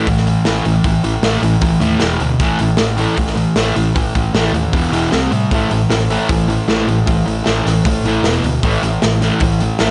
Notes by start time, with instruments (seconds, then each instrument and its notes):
0.07 fingered electric bass A1, distorted electric guitar A2 E3, kick, open hi-hat
0.17 snare
0.27 distorted electric guitar A2 E3, open hi-hat
0.45 fingered electric bass A1, distorted electric guitar A2 E3 A3, snare, open hi-hat
0.65 fingered electric bass A1, distorted electric guitar A2 E3, open hi-hat
0.84 fingered electric bass A1, distorted electric guitar A2 E3, kick, open hi-hat
1.04 fingered electric bass A1, distorted electric guitar A2 E3, open hi-hat
1.22 fingered electric bass A1, distorted electric guitar A2 E3 A3, snare, open hi-hat
1.42 fingered electric bass A1, distorted electric guitar A2 E3, open hi-hat
1.61 fingered electric bass A1, distorted electric guitar A2 E3, kick, open hi-hat
1.80 fingered electric bass D#2, distorted electric guitar A2 E3 A3, open hi-hat
2.00 fingered electric bass E1, distorted electric guitar E2 B2 E3, snare, open hi-hat
2.20 fingered electric bass D2, distorted electric guitar E2 B2, open hi-hat
2.40 fingered electric bass A1, distorted electric guitar A2 E3 A3, kick, open hi-hat
2.59 fingered electric bass A1, distorted electric guitar A2 E3, open hi-hat
2.77 fingered electric bass A1, distorted electric guitar A2 E3, snare, open hi-hat
2.98 distorted electric guitar A2 E3 A3, open hi-hat
3.17 fingered electric bass A1, distorted electric guitar A2 E3, kick, open hi-hat
3.27 snare
3.36 distorted electric guitar A2 E3, open hi-hat
3.56 fingered electric bass A1, distorted electric guitar A2 E3 A3, snare, open hi-hat
3.76 fingered electric bass A1, distorted electric guitar A2 E3, open hi-hat
3.94 fingered electric bass A1, distorted electric guitar A2 E3, kick, open hi-hat
4.15 fingered electric bass A1, distorted electric guitar A2 E3, kick, open hi-hat
4.34 fingered electric bass A1, distorted electric guitar A2 E3 A3, snare, open hi-hat
4.52 fingered electric bass D#2, distorted electric guitar A2 E3, open hi-hat
4.73 fingered electric bass E1, distorted electric guitar E2 B2 E3, kick, open hi-hat
4.91 fingered electric bass E1, distorted electric guitar E2 B2 E3, open hi-hat
5.11 fingered electric bass C2, distorted electric guitar C3 G3 C4, snare, open hi-hat
5.32 fingered electric bass A2, distorted electric guitar C3 G3, open hi-hat
5.51 fingered electric bass A1, distorted electric guitar A2 E3 A3, transistor combo organ E4 A4 C5, kick, open hi-hat
5.71 fingered electric bass A1, distorted electric guitar A2 E3, open hi-hat
5.89 fingered electric bass A1, distorted electric guitar A2 E3, transistor combo organ E4 A4 C5, snare, open hi-hat
6.10 distorted electric guitar A2 E3 A3, open hi-hat
6.28 fingered electric bass A1, distorted electric guitar A2 E3, transistor combo organ E4 A4 C5, kick, open hi-hat
6.49 distorted electric guitar A2 E3, open hi-hat
6.66 fingered electric bass A1, distorted electric guitar A2 E3 A3, transistor combo organ E4 A4 C5, snare, open hi-hat
6.87 fingered electric bass A1, distorted electric guitar A2 E3, open hi-hat
7.03 fingered electric bass A1, distorted electric guitar A2, transistor combo organ E4 A4 C5
7.07 distorted electric guitar E3, kick, open hi-hat
7.26 fingered electric bass A1, distorted electric guitar A2 E3, open hi-hat
7.41 distorted electric guitar A2, transistor combo organ E4 A4 C5
7.45 fingered electric bass A1, distorted electric guitar E3 A3, snare, open hi-hat
7.65 fingered electric bass A1, distorted electric guitar A2 E3, snare, open hi-hat
7.82 fingered electric bass A1, distorted electric guitar A2, transistor combo organ E4 A4 C5, kick, open hi-hat
7.87 distorted electric guitar E3
8.04 fingered electric bass A1, distorted electric guitar A2 E3 A3, open hi-hat
8.21 fingered electric bass E1, transistor combo organ B3 E4 B4, snare, open hi-hat
8.26 distorted electric guitar E2 B2 E3
8.43 fingered electric bass D2, distorted electric guitar E2 B2, open hi-hat
8.60 fingered electric bass A1, distorted electric guitar A2, transistor combo organ C4 E4 A4, kick, open hi-hat
8.65 distorted electric guitar E3 A3
8.83 fingered electric bass A1, distorted electric guitar A2 E3, open hi-hat
9.01 fingered electric bass A1, distorted electric guitar A2 E3, transistor combo organ C4 E4 A4, snare, open hi-hat
9.22 distorted electric guitar A2 E3 A3, snare, open hi-hat
9.40 fingered electric bass A1, distorted electric guitar A2 E3, transistor combo organ C4 E4 A4, kick, open hi-hat
9.60 distorted electric guitar A2 E3, open hi-hat
9.79 fingered electric bass A1, distorted electric guitar A2 E3 A3, transistor combo organ C4 E4 A4, snare, open hi-hat